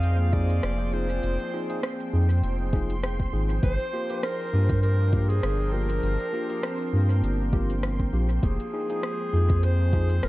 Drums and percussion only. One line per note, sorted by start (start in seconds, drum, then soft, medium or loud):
0.03 closed hi-hat medium
0.33 kick loud
0.50 closed hi-hat soft
0.63 cross-stick medium
0.63 closed hi-hat medium
1.10 closed hi-hat soft
1.23 closed hi-hat medium
1.40 closed hi-hat soft
1.70 closed hi-hat soft
1.83 cross-stick medium
1.83 closed hi-hat soft
2.00 closed hi-hat soft
2.30 closed hi-hat soft
2.44 closed hi-hat medium
2.73 kick loud
2.90 closed hi-hat soft
3.03 cross-stick medium
3.03 closed hi-hat medium
3.20 kick medium
3.50 closed hi-hat soft
3.63 kick loud
3.63 closed hi-hat medium
3.80 closed hi-hat soft
4.10 closed hi-hat soft
4.23 cross-stick medium
4.23 closed hi-hat soft
4.70 kick loud
4.70 closed hi-hat soft
4.83 closed hi-hat medium
5.13 kick loud
5.30 closed hi-hat soft
5.43 cross-stick medium
5.43 closed hi-hat soft
5.90 closed hi-hat soft
6.03 closed hi-hat medium
6.20 closed hi-hat soft
6.50 closed hi-hat soft
6.63 cross-stick medium
6.63 closed hi-hat soft
7.10 closed hi-hat soft
7.24 closed hi-hat medium
7.53 kick loud
7.70 closed hi-hat soft
7.83 cross-stick medium
7.83 closed hi-hat soft
8.00 kick medium
8.30 closed hi-hat soft
8.43 kick loud
8.43 closed hi-hat medium
8.60 closed hi-hat soft
8.90 closed hi-hat soft
9.03 cross-stick medium
9.03 closed hi-hat soft
9.50 kick loud
9.50 closed hi-hat soft
9.63 closed hi-hat medium
9.93 kick loud
10.10 closed hi-hat soft
10.23 cross-stick medium
10.23 closed hi-hat soft